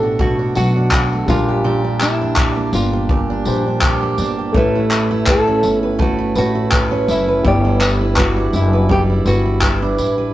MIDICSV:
0, 0, Header, 1, 6, 480
1, 0, Start_track
1, 0, Tempo, 725514
1, 1088, Time_signature, 4, 2, 24, 8
1, 6839, End_track
2, 0, Start_track
2, 0, Title_t, "Nylon-string guitar"
2, 0, Program_c, 0, 24
2, 0, Note_on_c, 0, 69, 94
2, 20, Note_off_c, 0, 69, 0
2, 20, Note_on_c, 0, 67, 94
2, 135, Note_off_c, 0, 67, 0
2, 138, Note_on_c, 0, 66, 86
2, 368, Note_off_c, 0, 66, 0
2, 376, Note_on_c, 0, 66, 100
2, 856, Note_off_c, 0, 66, 0
2, 858, Note_on_c, 0, 65, 88
2, 1339, Note_on_c, 0, 64, 86
2, 1348, Note_off_c, 0, 65, 0
2, 1817, Note_on_c, 0, 65, 79
2, 1828, Note_off_c, 0, 64, 0
2, 2746, Note_off_c, 0, 65, 0
2, 3025, Note_on_c, 0, 64, 89
2, 3507, Note_on_c, 0, 69, 99
2, 3511, Note_off_c, 0, 64, 0
2, 3864, Note_off_c, 0, 69, 0
2, 3864, Note_on_c, 0, 67, 99
2, 3981, Note_off_c, 0, 67, 0
2, 3984, Note_on_c, 0, 66, 94
2, 4215, Note_off_c, 0, 66, 0
2, 4223, Note_on_c, 0, 66, 106
2, 4701, Note_off_c, 0, 66, 0
2, 4703, Note_on_c, 0, 64, 85
2, 4938, Note_off_c, 0, 64, 0
2, 4941, Note_on_c, 0, 67, 97
2, 5415, Note_off_c, 0, 67, 0
2, 5418, Note_on_c, 0, 66, 91
2, 5636, Note_off_c, 0, 66, 0
2, 5661, Note_on_c, 0, 64, 85
2, 5894, Note_off_c, 0, 64, 0
2, 5896, Note_on_c, 0, 67, 100
2, 5960, Note_off_c, 0, 67, 0
2, 6135, Note_on_c, 0, 66, 103
2, 6371, Note_on_c, 0, 64, 85
2, 6377, Note_off_c, 0, 66, 0
2, 6714, Note_off_c, 0, 64, 0
2, 6839, End_track
3, 0, Start_track
3, 0, Title_t, "Steel-string acoustic guitar"
3, 0, Program_c, 1, 25
3, 0, Note_on_c, 1, 47, 77
3, 0, Note_on_c, 1, 57, 52
3, 0, Note_on_c, 1, 62, 60
3, 19, Note_on_c, 1, 66, 62
3, 121, Note_off_c, 1, 47, 0
3, 124, Note_off_c, 1, 66, 0
3, 129, Note_on_c, 1, 47, 85
3, 135, Note_on_c, 1, 66, 62
3, 256, Note_off_c, 1, 62, 0
3, 258, Note_on_c, 1, 62, 57
3, 360, Note_off_c, 1, 66, 0
3, 368, Note_on_c, 1, 66, 58
3, 500, Note_off_c, 1, 62, 0
3, 503, Note_on_c, 1, 62, 59
3, 602, Note_off_c, 1, 66, 0
3, 610, Note_on_c, 1, 66, 69
3, 738, Note_off_c, 1, 57, 0
3, 746, Note_on_c, 1, 57, 53
3, 849, Note_off_c, 1, 47, 0
3, 849, Note_on_c, 1, 46, 81
3, 902, Note_off_c, 1, 66, 0
3, 904, Note_off_c, 1, 57, 0
3, 983, Note_on_c, 1, 67, 56
3, 1079, Note_off_c, 1, 46, 0
3, 1083, Note_off_c, 1, 67, 0
3, 1087, Note_on_c, 1, 46, 80
3, 1091, Note_on_c, 1, 67, 73
3, 1218, Note_off_c, 1, 62, 0
3, 1220, Note_on_c, 1, 62, 57
3, 1323, Note_off_c, 1, 67, 0
3, 1331, Note_on_c, 1, 67, 61
3, 1458, Note_off_c, 1, 62, 0
3, 1466, Note_on_c, 1, 62, 61
3, 1565, Note_off_c, 1, 67, 0
3, 1573, Note_on_c, 1, 67, 70
3, 1698, Note_on_c, 1, 58, 51
3, 1800, Note_off_c, 1, 62, 0
3, 1808, Note_on_c, 1, 62, 59
3, 1932, Note_off_c, 1, 67, 0
3, 1940, Note_on_c, 1, 67, 63
3, 2044, Note_off_c, 1, 46, 0
3, 2048, Note_off_c, 1, 67, 0
3, 2052, Note_on_c, 1, 46, 82
3, 2057, Note_on_c, 1, 67, 67
3, 2175, Note_off_c, 1, 62, 0
3, 2183, Note_on_c, 1, 62, 61
3, 2284, Note_off_c, 1, 67, 0
3, 2292, Note_on_c, 1, 67, 60
3, 2417, Note_off_c, 1, 62, 0
3, 2425, Note_on_c, 1, 62, 51
3, 2524, Note_off_c, 1, 67, 0
3, 2532, Note_on_c, 1, 67, 74
3, 2655, Note_off_c, 1, 58, 0
3, 2663, Note_on_c, 1, 58, 56
3, 2765, Note_off_c, 1, 62, 0
3, 2773, Note_on_c, 1, 62, 59
3, 2894, Note_off_c, 1, 67, 0
3, 2902, Note_on_c, 1, 67, 53
3, 3009, Note_off_c, 1, 67, 0
3, 3012, Note_on_c, 1, 57, 79
3, 3017, Note_on_c, 1, 71, 62
3, 3063, Note_off_c, 1, 46, 0
3, 3063, Note_off_c, 1, 58, 0
3, 3063, Note_off_c, 1, 62, 0
3, 3145, Note_on_c, 1, 64, 52
3, 3245, Note_off_c, 1, 71, 0
3, 3248, Note_on_c, 1, 71, 64
3, 3377, Note_off_c, 1, 64, 0
3, 3379, Note_on_c, 1, 64, 69
3, 3488, Note_off_c, 1, 71, 0
3, 3490, Note_on_c, 1, 71, 69
3, 3621, Note_on_c, 1, 61, 57
3, 3723, Note_off_c, 1, 64, 0
3, 3725, Note_on_c, 1, 64, 57
3, 3854, Note_off_c, 1, 71, 0
3, 3857, Note_on_c, 1, 71, 64
3, 3953, Note_off_c, 1, 57, 0
3, 3961, Note_off_c, 1, 71, 0
3, 3961, Note_on_c, 1, 57, 81
3, 3964, Note_on_c, 1, 71, 64
3, 4089, Note_off_c, 1, 64, 0
3, 4092, Note_on_c, 1, 64, 59
3, 4202, Note_off_c, 1, 71, 0
3, 4204, Note_on_c, 1, 71, 63
3, 4331, Note_off_c, 1, 64, 0
3, 4334, Note_on_c, 1, 64, 55
3, 4443, Note_off_c, 1, 71, 0
3, 4446, Note_on_c, 1, 71, 70
3, 4565, Note_off_c, 1, 61, 0
3, 4573, Note_on_c, 1, 61, 59
3, 4681, Note_off_c, 1, 64, 0
3, 4684, Note_on_c, 1, 64, 60
3, 4816, Note_off_c, 1, 71, 0
3, 4818, Note_on_c, 1, 71, 60
3, 4924, Note_off_c, 1, 57, 0
3, 4930, Note_on_c, 1, 55, 89
3, 4933, Note_off_c, 1, 71, 0
3, 4936, Note_on_c, 1, 71, 58
3, 4977, Note_off_c, 1, 61, 0
3, 5057, Note_off_c, 1, 64, 0
3, 5060, Note_on_c, 1, 64, 57
3, 5161, Note_off_c, 1, 71, 0
3, 5164, Note_on_c, 1, 71, 64
3, 5291, Note_off_c, 1, 64, 0
3, 5299, Note_on_c, 1, 64, 59
3, 5399, Note_off_c, 1, 71, 0
3, 5402, Note_on_c, 1, 71, 73
3, 5534, Note_on_c, 1, 62, 52
3, 5634, Note_off_c, 1, 64, 0
3, 5642, Note_on_c, 1, 64, 59
3, 5775, Note_off_c, 1, 71, 0
3, 5778, Note_on_c, 1, 71, 58
3, 5874, Note_off_c, 1, 55, 0
3, 5882, Note_on_c, 1, 55, 77
3, 5883, Note_off_c, 1, 71, 0
3, 5886, Note_on_c, 1, 71, 58
3, 6011, Note_off_c, 1, 64, 0
3, 6019, Note_on_c, 1, 64, 51
3, 6124, Note_off_c, 1, 71, 0
3, 6126, Note_on_c, 1, 71, 60
3, 6249, Note_off_c, 1, 64, 0
3, 6257, Note_on_c, 1, 64, 51
3, 6361, Note_off_c, 1, 71, 0
3, 6364, Note_on_c, 1, 71, 69
3, 6496, Note_off_c, 1, 62, 0
3, 6499, Note_on_c, 1, 62, 54
3, 6597, Note_off_c, 1, 64, 0
3, 6605, Note_on_c, 1, 64, 55
3, 6732, Note_off_c, 1, 71, 0
3, 6734, Note_on_c, 1, 71, 58
3, 6839, Note_off_c, 1, 55, 0
3, 6839, Note_off_c, 1, 62, 0
3, 6839, Note_off_c, 1, 64, 0
3, 6839, Note_off_c, 1, 71, 0
3, 6839, End_track
4, 0, Start_track
4, 0, Title_t, "Felt piano"
4, 0, Program_c, 2, 0
4, 0, Control_c, 2, 64, 127
4, 0, Note_on_c, 2, 57, 62
4, 0, Note_on_c, 2, 62, 55
4, 0, Note_on_c, 2, 71, 73
4, 816, Note_off_c, 2, 57, 0
4, 824, Note_off_c, 2, 62, 0
4, 829, Note_off_c, 2, 71, 0
4, 835, Note_on_c, 2, 55, 62
4, 849, Note_on_c, 2, 62, 58
4, 857, Control_c, 2, 64, 0
4, 861, Note_on_c, 2, 70, 69
4, 976, Control_c, 2, 64, 127
4, 2256, Note_off_c, 2, 55, 0
4, 2262, Note_off_c, 2, 62, 0
4, 2269, Note_off_c, 2, 70, 0
4, 2285, Note_on_c, 2, 55, 45
4, 2293, Note_on_c, 2, 62, 44
4, 2297, Note_on_c, 2, 72, 54
4, 2993, Note_on_c, 2, 57, 65
4, 3007, Note_off_c, 2, 55, 0
4, 3008, Note_on_c, 2, 61, 54
4, 3011, Note_off_c, 2, 62, 0
4, 3013, Note_off_c, 2, 72, 0
4, 3018, Control_c, 2, 64, 0
4, 3021, Note_on_c, 2, 71, 71
4, 3130, Control_c, 2, 64, 127
4, 4893, Note_off_c, 2, 57, 0
4, 4901, Note_off_c, 2, 61, 0
4, 4907, Note_off_c, 2, 71, 0
4, 4917, Note_on_c, 2, 55, 66
4, 4930, Note_on_c, 2, 64, 55
4, 4937, Control_c, 2, 64, 0
4, 4944, Note_on_c, 2, 74, 67
4, 5041, Control_c, 2, 64, 127
4, 6813, Note_off_c, 2, 55, 0
4, 6820, Note_off_c, 2, 64, 0
4, 6827, Note_off_c, 2, 74, 0
4, 6839, End_track
5, 0, Start_track
5, 0, Title_t, "Upright bass"
5, 0, Program_c, 3, 32
5, 0, Note_on_c, 3, 33, 80
5, 341, Note_off_c, 3, 33, 0
5, 368, Note_on_c, 3, 35, 80
5, 822, Note_off_c, 3, 35, 0
5, 847, Note_on_c, 3, 34, 88
5, 1781, Note_off_c, 3, 34, 0
5, 1804, Note_on_c, 3, 31, 89
5, 2260, Note_off_c, 3, 31, 0
5, 2285, Note_on_c, 3, 34, 89
5, 2740, Note_off_c, 3, 34, 0
5, 2767, Note_on_c, 3, 31, 83
5, 2988, Note_off_c, 3, 31, 0
5, 3007, Note_on_c, 3, 33, 90
5, 3701, Note_off_c, 3, 33, 0
5, 3730, Note_on_c, 3, 31, 88
5, 4182, Note_off_c, 3, 31, 0
5, 4206, Note_on_c, 3, 33, 92
5, 4660, Note_off_c, 3, 33, 0
5, 4687, Note_on_c, 3, 30, 88
5, 4908, Note_off_c, 3, 30, 0
5, 4926, Note_on_c, 3, 31, 97
5, 5619, Note_off_c, 3, 31, 0
5, 5646, Note_on_c, 3, 30, 87
5, 6099, Note_off_c, 3, 30, 0
5, 6123, Note_on_c, 3, 31, 94
5, 6577, Note_off_c, 3, 31, 0
5, 6603, Note_on_c, 3, 33, 79
5, 6825, Note_off_c, 3, 33, 0
5, 6839, End_track
6, 0, Start_track
6, 0, Title_t, "Drums"
6, 127, Note_on_c, 9, 36, 92
6, 193, Note_off_c, 9, 36, 0
6, 366, Note_on_c, 9, 54, 56
6, 432, Note_off_c, 9, 54, 0
6, 604, Note_on_c, 9, 39, 104
6, 609, Note_on_c, 9, 36, 111
6, 670, Note_off_c, 9, 39, 0
6, 676, Note_off_c, 9, 36, 0
6, 847, Note_on_c, 9, 36, 92
6, 847, Note_on_c, 9, 54, 47
6, 913, Note_off_c, 9, 36, 0
6, 913, Note_off_c, 9, 54, 0
6, 1327, Note_on_c, 9, 39, 88
6, 1328, Note_on_c, 9, 54, 64
6, 1394, Note_off_c, 9, 39, 0
6, 1394, Note_off_c, 9, 54, 0
6, 1563, Note_on_c, 9, 39, 116
6, 1568, Note_on_c, 9, 36, 124
6, 1629, Note_off_c, 9, 39, 0
6, 1634, Note_off_c, 9, 36, 0
6, 1805, Note_on_c, 9, 54, 64
6, 1872, Note_off_c, 9, 54, 0
6, 2046, Note_on_c, 9, 36, 103
6, 2112, Note_off_c, 9, 36, 0
6, 2285, Note_on_c, 9, 54, 53
6, 2351, Note_off_c, 9, 54, 0
6, 2524, Note_on_c, 9, 39, 117
6, 2529, Note_on_c, 9, 36, 116
6, 2590, Note_off_c, 9, 39, 0
6, 2596, Note_off_c, 9, 36, 0
6, 2765, Note_on_c, 9, 54, 54
6, 2831, Note_off_c, 9, 54, 0
6, 3007, Note_on_c, 9, 36, 110
6, 3073, Note_off_c, 9, 36, 0
6, 3248, Note_on_c, 9, 39, 90
6, 3249, Note_on_c, 9, 54, 60
6, 3315, Note_off_c, 9, 39, 0
6, 3315, Note_off_c, 9, 54, 0
6, 3484, Note_on_c, 9, 39, 109
6, 3488, Note_on_c, 9, 36, 120
6, 3550, Note_off_c, 9, 39, 0
6, 3554, Note_off_c, 9, 36, 0
6, 3725, Note_on_c, 9, 54, 66
6, 3791, Note_off_c, 9, 54, 0
6, 3966, Note_on_c, 9, 36, 103
6, 4032, Note_off_c, 9, 36, 0
6, 4204, Note_on_c, 9, 54, 55
6, 4270, Note_off_c, 9, 54, 0
6, 4444, Note_on_c, 9, 39, 109
6, 4449, Note_on_c, 9, 36, 114
6, 4510, Note_off_c, 9, 39, 0
6, 4515, Note_off_c, 9, 36, 0
6, 4687, Note_on_c, 9, 54, 59
6, 4753, Note_off_c, 9, 54, 0
6, 4927, Note_on_c, 9, 36, 107
6, 4993, Note_off_c, 9, 36, 0
6, 5166, Note_on_c, 9, 39, 97
6, 5167, Note_on_c, 9, 54, 68
6, 5232, Note_off_c, 9, 39, 0
6, 5233, Note_off_c, 9, 54, 0
6, 5402, Note_on_c, 9, 39, 120
6, 5407, Note_on_c, 9, 36, 115
6, 5468, Note_off_c, 9, 39, 0
6, 5473, Note_off_c, 9, 36, 0
6, 5646, Note_on_c, 9, 54, 61
6, 5712, Note_off_c, 9, 54, 0
6, 5885, Note_on_c, 9, 36, 94
6, 5951, Note_off_c, 9, 36, 0
6, 6124, Note_on_c, 9, 54, 53
6, 6190, Note_off_c, 9, 54, 0
6, 6362, Note_on_c, 9, 39, 106
6, 6367, Note_on_c, 9, 36, 98
6, 6428, Note_off_c, 9, 39, 0
6, 6433, Note_off_c, 9, 36, 0
6, 6605, Note_on_c, 9, 54, 52
6, 6671, Note_off_c, 9, 54, 0
6, 6839, End_track
0, 0, End_of_file